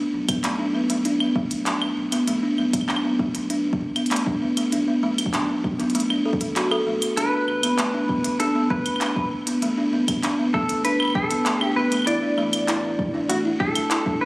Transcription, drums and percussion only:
0.29 kick, closed hi-hat, claves
0.44 clap, closed hi-hat
0.90 closed hi-hat
1.05 closed hi-hat
1.20 claves
1.36 kick
1.51 closed hi-hat
1.66 clap, closed hi-hat
1.82 claves
2.12 closed hi-hat, claves
2.28 closed hi-hat
2.58 claves
2.73 kick, closed hi-hat, claves
2.81 claves
2.89 clap, claves
2.96 claves
3.19 kick
3.35 closed hi-hat
3.50 closed hi-hat
3.73 kick
3.96 closed hi-hat, claves
4.06 closed hi-hat
4.11 clap, closed hi-hat
4.16 closed hi-hat
4.26 kick
4.57 closed hi-hat, claves
4.72 closed hi-hat
5.18 closed hi-hat, claves
5.26 kick
5.34 clap, closed hi-hat
5.64 kick
5.80 closed hi-hat
5.90 closed hi-hat
5.95 closed hi-hat
6.00 closed hi-hat
6.10 claves
6.33 kick
6.41 closed hi-hat
6.56 clap, closed hi-hat
6.71 claves
7.02 closed hi-hat, claves
7.17 closed hi-hat
7.48 claves
7.63 closed hi-hat, claves
7.79 clap, closed hi-hat
8.09 kick
8.24 closed hi-hat
8.40 closed hi-hat
8.70 kick
8.86 closed hi-hat, claves
8.96 claves
9.01 clap, closed hi-hat
9.06 claves
9.16 kick
9.47 closed hi-hat
9.62 closed hi-hat
10.08 kick, closed hi-hat, claves
10.23 clap, closed hi-hat
10.54 kick
10.69 closed hi-hat
10.85 closed hi-hat
11.00 claves
11.03 claves
11.05 claves
11.08 claves
11.10 claves
11.13 kick, claves
11.31 closed hi-hat
11.46 clap, closed hi-hat
11.61 claves
11.92 closed hi-hat, claves
11.94 claves
11.97 claves
11.99 claves
12.02 claves
12.05 closed hi-hat, claves
12.38 claves
12.53 closed hi-hat, claves
12.68 clap, closed hi-hat
12.99 kick
13.30 closed hi-hat
13.60 kick
13.75 closed hi-hat, claves
13.91 clap, closed hi-hat
14.06 kick

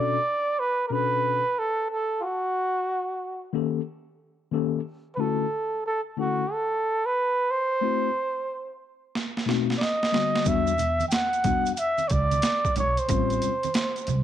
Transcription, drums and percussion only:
9.15 snare
9.37 snare
9.49 snare
9.70 snare
9.81 snare
10.03 snare
10.14 snare
10.35 snare
10.45 kick, closed hi-hat, maracas
10.67 closed hi-hat, maracas
10.78 closed hi-hat, low conga, maracas
11.00 closed hi-hat, high conga, maracas
11.11 snare, closed hi-hat, maracas
11.33 closed hi-hat, maracas
11.44 kick, closed hi-hat, low conga, maracas
11.66 closed hi-hat, maracas
11.77 closed hi-hat, maracas
11.98 closed hi-hat, high conga, maracas
12.10 kick, closed hi-hat, maracas
12.31 closed hi-hat, high conga, maracas
12.42 snare, closed hi-hat, maracas
12.65 kick, maracas
12.76 closed hi-hat, low conga, maracas
12.97 closed hi-hat, maracas
13.09 kick, closed hi-hat, maracas
13.30 closed hi-hat, maracas
13.42 closed hi-hat, low conga, maracas
13.63 closed hi-hat, high conga, maracas
13.74 snare, closed hi-hat, maracas
13.96 closed hi-hat, maracas
14.07 closed hi-hat, low conga, maracas

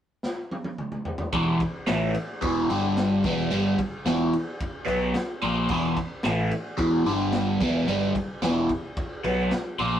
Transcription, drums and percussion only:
0.23 snare
0.51 high tom
0.64 high tom
0.78 mid tom
0.92 mid tom
1.05 floor tom
1.18 floor tom
1.32 kick, ride
1.60 kick, ride
1.87 snare, ride
2.14 ride
2.42 kick, ride
2.70 ride
2.97 snare, ride
3.24 kick, ride
3.51 ride
3.78 kick, ride
4.06 snare, ride
4.33 ride
4.60 kick, ride
4.88 ride
5.14 snare, ride
5.42 ride
5.69 kick, crash
5.97 kick, ride
6.23 snare, ride
6.51 ride
6.79 kick, ride
7.06 ride
7.32 snare, ride
7.61 kick, ride
7.88 ride
8.15 kick, ride
8.42 snare, ride
8.69 kick, ride
8.97 kick, ride
9.24 ride
9.51 snare, ride
9.79 ride

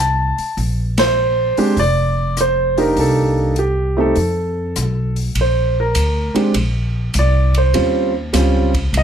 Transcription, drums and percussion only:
0.38 open hi-hat
0.58 open hi-hat
0.98 snare, ride
1.57 open hi-hat
1.77 open hi-hat
2.37 cross-stick, closed hi-hat
2.78 open hi-hat
2.97 open hi-hat
3.56 closed hi-hat
4.16 open hi-hat
4.76 cross-stick, closed hi-hat
5.16 open hi-hat
5.35 ride
5.95 hi-hat pedal, ride
6.35 ride
6.54 ride
7.14 hi-hat pedal, ride
7.54 ride
7.74 ride
8.34 snare, hi-hat pedal, ride
8.74 kick, ride
8.94 ride

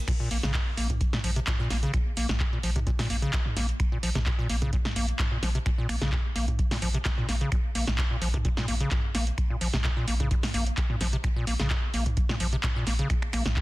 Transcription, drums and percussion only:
0.08 finger snap, kick, closed hi-hat, crash
0.31 open hi-hat
0.43 snare, closed hi-hat, mid tom
0.54 kick, clap
0.77 open hi-hat
0.90 kick, closed hi-hat, mid tom
1.01 kick, closed hi-hat
1.13 snare, mid tom
1.24 open hi-hat
1.36 closed hi-hat
1.47 kick, clap, closed hi-hat, mid tom
1.70 snare, open hi-hat
1.83 closed hi-hat
1.94 finger snap, kick, closed hi-hat
2.17 open hi-hat
2.29 snare, closed hi-hat, mid tom
2.40 kick, clap
2.63 open hi-hat
2.76 kick, closed hi-hat, mid tom
2.87 kick, closed hi-hat
2.99 snare, mid tom, open hi-hat
3.10 open hi-hat
3.22 closed hi-hat
3.33 kick, clap, closed hi-hat
3.46 mid tom
3.57 snare, open hi-hat
3.69 closed hi-hat
3.80 finger snap, kick, closed hi-hat
4.03 open hi-hat
4.15 snare, closed hi-hat, mid tom
4.26 kick, clap
4.49 open hi-hat
4.62 kick, closed hi-hat, mid tom
4.73 kick, closed hi-hat
4.85 snare, mid tom
4.96 open hi-hat
5.08 closed hi-hat
5.19 kick, clap, closed hi-hat, mid tom
5.43 snare, open hi-hat
5.55 closed hi-hat
5.66 finger snap, kick, closed hi-hat
5.89 finger snap, open hi-hat
6.02 snare, closed hi-hat, mid tom
6.12 kick, clap
6.36 open hi-hat
6.48 kick, closed hi-hat, mid tom
6.59 kick, closed hi-hat
6.71 snare, mid tom, open hi-hat
6.82 open hi-hat
6.94 closed hi-hat
7.05 kick, snare, clap, closed hi-hat
7.18 mid tom
7.29 snare, open hi-hat
7.41 closed hi-hat
7.52 finger snap, kick, closed hi-hat
7.75 open hi-hat
7.87 snare, closed hi-hat, mid tom
7.98 kick, clap
8.22 open hi-hat
8.34 kick, closed hi-hat, mid tom
8.45 kick, closed hi-hat
8.57 snare, mid tom
8.68 open hi-hat
8.80 closed hi-hat
8.91 kick, clap, closed hi-hat, mid tom
9.15 snare, open hi-hat
9.27 closed hi-hat
9.38 finger snap, kick, closed hi-hat
9.61 open hi-hat
9.74 snare, closed hi-hat, mid tom
9.84 kick, clap
10.08 open hi-hat
10.20 kick, closed hi-hat, mid tom
10.31 kick, closed hi-hat
10.43 snare, mid tom, open hi-hat
10.54 open hi-hat
10.67 closed hi-hat
10.77 kick, clap, closed hi-hat
10.90 mid tom
11.01 snare, open hi-hat
11.13 closed hi-hat
11.24 finger snap, kick, closed hi-hat
11.47 open hi-hat
11.60 snare, closed hi-hat, mid tom
11.70 kick, clap
11.94 open hi-hat
12.06 kick, closed hi-hat, mid tom
12.17 kick, closed hi-hat
12.29 snare, mid tom
12.40 open hi-hat
12.53 closed hi-hat
12.63 kick, clap, closed hi-hat, mid tom
12.87 snare, open hi-hat
12.99 closed hi-hat
13.10 finger snap, kick, closed hi-hat
13.22 finger snap
13.33 finger snap, open hi-hat
13.46 snare, closed hi-hat, mid tom
13.56 kick, clap

